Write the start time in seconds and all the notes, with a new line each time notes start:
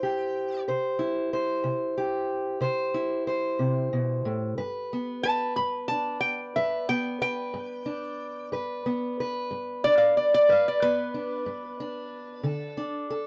Already playing: C3 E4 C5 G5
0.03 G4
0.68 C3 C5
0.99 E4
1.33 C5
1.64 C3
1.98 G4
2.61 C3 C5
2.94 E4
3.27 C5
3.59 C3
3.93 B2
4.25 A2
4.58 G2 B4
4.93 B3
5.23 B4 A5
5.56 G2 B5
5.88 D4 A5
6.20 G5
6.56 G2 B4 E5
6.89 B3 G5
7.21 B4 G5
7.54 G2
7.86 D4
8.52 G2 B4
8.86 B3
9.20 B4
9.51 G2
9.84 D4 D5
9.98 F5
10.17 D5
10.34 D5
10.49 G2 B4 F5
10.68 D5
10.82 B3 B4
11.14 D4
11.46 G2
11.80 D4
12.43 D3 A4
12.77 D4
13.10 A4